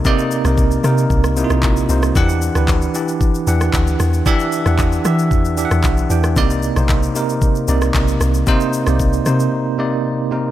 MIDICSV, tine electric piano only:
0, 0, Header, 1, 2, 480
1, 0, Start_track
1, 0, Tempo, 526316
1, 45, Time_signature, 4, 2, 24, 8
1, 9588, End_track
2, 0, Start_track
2, 0, Title_t, "Tine electric piano"
2, 0, Program_c, 0, 4
2, 0, Control_c, 0, 64, 127
2, 0, Note_on_c, 0, 48, 90
2, 0, Note_on_c, 0, 58, 78
2, 0, Note_on_c, 0, 60, 75
2, 0, Note_on_c, 0, 63, 84
2, 0, Note_on_c, 0, 69, 100
2, 0, Note_on_c, 0, 74, 97
2, 47, Note_off_c, 0, 48, 0
2, 47, Note_on_c, 0, 48, 113
2, 50, Note_off_c, 0, 58, 0
2, 50, Note_on_c, 0, 58, 104
2, 56, Note_off_c, 0, 63, 0
2, 56, Note_on_c, 0, 63, 105
2, 60, Note_off_c, 0, 74, 0
2, 60, Note_on_c, 0, 74, 127
2, 336, Note_off_c, 0, 48, 0
2, 337, Note_off_c, 0, 58, 0
2, 341, Note_off_c, 0, 63, 0
2, 342, Note_off_c, 0, 74, 0
2, 410, Note_on_c, 0, 48, 72
2, 414, Note_on_c, 0, 58, 71
2, 419, Note_on_c, 0, 63, 69
2, 422, Note_on_c, 0, 70, 82
2, 696, Note_off_c, 0, 48, 0
2, 698, Note_off_c, 0, 58, 0
2, 700, Note_off_c, 0, 63, 0
2, 702, Note_off_c, 0, 70, 0
2, 764, Note_on_c, 0, 48, 84
2, 768, Note_on_c, 0, 58, 74
2, 773, Note_on_c, 0, 63, 80
2, 777, Note_on_c, 0, 70, 93
2, 1152, Note_off_c, 0, 48, 0
2, 1154, Note_off_c, 0, 58, 0
2, 1157, Note_off_c, 0, 63, 0
2, 1159, Note_off_c, 0, 70, 0
2, 1245, Note_on_c, 0, 48, 88
2, 1248, Note_on_c, 0, 58, 78
2, 1254, Note_on_c, 0, 63, 84
2, 1258, Note_on_c, 0, 64, 80
2, 1312, Note_off_c, 0, 64, 0
2, 1315, Note_on_c, 0, 65, 100
2, 1633, Note_off_c, 0, 48, 0
2, 1634, Note_off_c, 0, 58, 0
2, 1637, Note_off_c, 0, 63, 0
2, 1668, Note_off_c, 0, 65, 0
2, 1725, Note_on_c, 0, 48, 83
2, 1730, Note_on_c, 0, 58, 75
2, 1735, Note_on_c, 0, 63, 76
2, 1740, Note_on_c, 0, 72, 89
2, 1919, Note_off_c, 0, 48, 0
2, 1921, Note_off_c, 0, 58, 0
2, 1924, Note_off_c, 0, 63, 0
2, 1926, Note_off_c, 0, 72, 0
2, 1966, Note_on_c, 0, 52, 111
2, 1970, Note_on_c, 0, 62, 99
2, 1975, Note_on_c, 0, 67, 104
2, 1978, Control_c, 0, 64, 0
2, 1979, Note_on_c, 0, 78, 122
2, 1982, Note_off_c, 0, 69, 0
2, 1986, Note_off_c, 0, 60, 0
2, 2133, Control_c, 0, 64, 127
2, 2255, Note_off_c, 0, 52, 0
2, 2258, Note_off_c, 0, 62, 0
2, 2260, Note_off_c, 0, 67, 0
2, 2262, Note_off_c, 0, 78, 0
2, 2330, Note_on_c, 0, 52, 73
2, 2335, Note_on_c, 0, 62, 69
2, 2339, Note_on_c, 0, 67, 67
2, 2344, Note_on_c, 0, 71, 87
2, 2616, Note_off_c, 0, 52, 0
2, 2618, Note_off_c, 0, 62, 0
2, 2621, Note_off_c, 0, 67, 0
2, 2623, Note_off_c, 0, 71, 0
2, 2685, Note_on_c, 0, 52, 86
2, 2689, Note_on_c, 0, 62, 77
2, 2695, Note_on_c, 0, 67, 76
2, 2699, Note_on_c, 0, 74, 91
2, 3073, Note_off_c, 0, 52, 0
2, 3075, Note_off_c, 0, 62, 0
2, 3078, Note_off_c, 0, 67, 0
2, 3080, Note_off_c, 0, 74, 0
2, 3163, Note_on_c, 0, 52, 88
2, 3168, Note_on_c, 0, 62, 79
2, 3172, Note_on_c, 0, 67, 81
2, 3177, Note_on_c, 0, 78, 95
2, 3744, Note_off_c, 0, 52, 0
2, 3746, Note_off_c, 0, 62, 0
2, 3748, Note_off_c, 0, 67, 0
2, 3751, Note_off_c, 0, 78, 0
2, 3884, Note_on_c, 0, 52, 117
2, 3888, Note_on_c, 0, 62, 106
2, 3892, Note_on_c, 0, 67, 104
2, 3898, Note_on_c, 0, 76, 127
2, 4174, Note_off_c, 0, 52, 0
2, 4176, Note_off_c, 0, 62, 0
2, 4179, Note_off_c, 0, 67, 0
2, 4181, Note_off_c, 0, 76, 0
2, 4247, Note_on_c, 0, 52, 75
2, 4252, Note_on_c, 0, 62, 70
2, 4256, Note_on_c, 0, 67, 66
2, 4261, Note_on_c, 0, 78, 85
2, 4535, Note_off_c, 0, 52, 0
2, 4537, Note_off_c, 0, 62, 0
2, 4539, Note_off_c, 0, 67, 0
2, 4542, Note_off_c, 0, 78, 0
2, 4601, Note_on_c, 0, 52, 85
2, 4606, Note_on_c, 0, 62, 76
2, 4610, Note_on_c, 0, 67, 76
2, 4614, Note_on_c, 0, 76, 98
2, 4991, Note_off_c, 0, 52, 0
2, 4993, Note_off_c, 0, 62, 0
2, 4995, Note_off_c, 0, 67, 0
2, 4997, Note_off_c, 0, 76, 0
2, 5081, Note_on_c, 0, 52, 85
2, 5085, Note_on_c, 0, 62, 82
2, 5089, Note_on_c, 0, 67, 80
2, 5095, Note_on_c, 0, 76, 77
2, 5150, Note_off_c, 0, 76, 0
2, 5153, Note_on_c, 0, 78, 98
2, 5471, Note_off_c, 0, 52, 0
2, 5473, Note_off_c, 0, 62, 0
2, 5475, Note_off_c, 0, 67, 0
2, 5507, Note_off_c, 0, 78, 0
2, 5562, Note_on_c, 0, 52, 79
2, 5567, Note_on_c, 0, 62, 79
2, 5571, Note_on_c, 0, 67, 75
2, 5576, Note_on_c, 0, 79, 92
2, 5757, Note_off_c, 0, 52, 0
2, 5760, Note_off_c, 0, 62, 0
2, 5762, Note_off_c, 0, 67, 0
2, 5764, Note_off_c, 0, 79, 0
2, 5804, Note_on_c, 0, 48, 110
2, 5808, Note_on_c, 0, 58, 98
2, 5812, Note_on_c, 0, 63, 103
2, 5816, Control_c, 0, 64, 0
2, 5817, Note_on_c, 0, 74, 123
2, 6002, Control_c, 0, 64, 127
2, 6094, Note_off_c, 0, 48, 0
2, 6097, Note_off_c, 0, 58, 0
2, 6098, Note_off_c, 0, 63, 0
2, 6101, Note_off_c, 0, 74, 0
2, 6169, Note_on_c, 0, 60, 75
2, 6174, Note_on_c, 0, 58, 66
2, 6178, Note_on_c, 0, 63, 70
2, 6182, Note_on_c, 0, 72, 85
2, 6455, Note_off_c, 0, 60, 0
2, 6458, Note_off_c, 0, 58, 0
2, 6460, Note_off_c, 0, 63, 0
2, 6462, Note_off_c, 0, 72, 0
2, 6523, Note_on_c, 0, 48, 90
2, 6529, Note_on_c, 0, 58, 80
2, 6532, Note_on_c, 0, 63, 80
2, 6537, Note_on_c, 0, 70, 95
2, 6912, Note_off_c, 0, 48, 0
2, 6915, Note_off_c, 0, 58, 0
2, 6916, Note_off_c, 0, 63, 0
2, 6919, Note_off_c, 0, 70, 0
2, 7004, Note_on_c, 0, 48, 91
2, 7009, Note_on_c, 0, 58, 83
2, 7013, Note_on_c, 0, 63, 80
2, 7017, Note_on_c, 0, 74, 97
2, 7584, Note_off_c, 0, 48, 0
2, 7587, Note_off_c, 0, 58, 0
2, 7589, Note_off_c, 0, 63, 0
2, 7591, Note_off_c, 0, 74, 0
2, 7724, Note_on_c, 0, 48, 114
2, 7727, Note_on_c, 0, 58, 102
2, 7732, Note_on_c, 0, 63, 104
2, 7737, Note_on_c, 0, 72, 118
2, 8014, Note_off_c, 0, 48, 0
2, 8016, Note_off_c, 0, 58, 0
2, 8018, Note_off_c, 0, 63, 0
2, 8021, Note_off_c, 0, 72, 0
2, 8088, Note_on_c, 0, 48, 77
2, 8093, Note_on_c, 0, 58, 70
2, 8097, Note_on_c, 0, 63, 73
2, 8103, Note_on_c, 0, 74, 80
2, 8375, Note_off_c, 0, 48, 0
2, 8378, Note_off_c, 0, 58, 0
2, 8379, Note_off_c, 0, 63, 0
2, 8382, Note_off_c, 0, 74, 0
2, 8443, Note_on_c, 0, 48, 84
2, 8447, Note_on_c, 0, 58, 80
2, 8451, Note_on_c, 0, 63, 77
2, 8457, Note_on_c, 0, 72, 91
2, 8832, Note_off_c, 0, 48, 0
2, 8834, Note_off_c, 0, 58, 0
2, 8836, Note_off_c, 0, 63, 0
2, 8839, Note_off_c, 0, 72, 0
2, 8922, Note_on_c, 0, 48, 89
2, 8925, Note_on_c, 0, 58, 79
2, 8930, Note_on_c, 0, 63, 79
2, 8935, Note_on_c, 0, 74, 93
2, 9311, Note_off_c, 0, 48, 0
2, 9313, Note_off_c, 0, 58, 0
2, 9316, Note_off_c, 0, 63, 0
2, 9318, Note_off_c, 0, 74, 0
2, 9402, Note_on_c, 0, 48, 82
2, 9407, Note_on_c, 0, 58, 74
2, 9411, Note_on_c, 0, 63, 71
2, 9416, Note_on_c, 0, 70, 89
2, 9588, Note_off_c, 0, 48, 0
2, 9588, Note_off_c, 0, 58, 0
2, 9588, Note_off_c, 0, 63, 0
2, 9588, Note_off_c, 0, 70, 0
2, 9588, End_track
0, 0, End_of_file